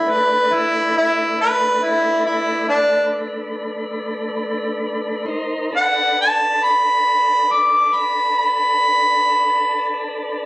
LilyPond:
<<
  \new Staff \with { instrumentName = "Harmonica" } { \time 12/8 \key b \minor \tempo 4. = 46 b'8 e'8 e'8 b'8 e'8 e'8 d'8 r2 r8 | r8 fis''8 a''8 b''4 d'''8 b''8 b''2 r8 | }
  \new Staff \with { instrumentName = "Tonewheel organ" } { \time 12/8 \key b \minor <a d' b'>1. | <dis' ais' c''>8 <d' a' b'>1~ <d' a' b'>4. | }
>>